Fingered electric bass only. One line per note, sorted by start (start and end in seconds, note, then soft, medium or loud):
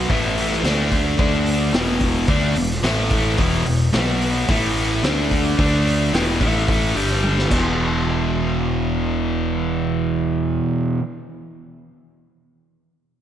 0.10 0.61 A1 medium
0.63 1.15 D2 medium
1.19 1.70 D2 loud
1.74 2.25 E1 medium
2.28 2.54 D2 loud
2.56 2.82 E1 medium
2.83 3.35 A1 loud
3.39 3.64 E1 medium
3.66 3.92 E1 medium
3.94 4.45 B1 loud
4.49 5.00 A1 medium
5.03 5.54 D2 medium
5.59 6.10 D2 medium
6.13 6.38 E1 medium
6.41 6.92 A1 loud
6.95 7.46 G1 loud
7.51 10.59 E1 medium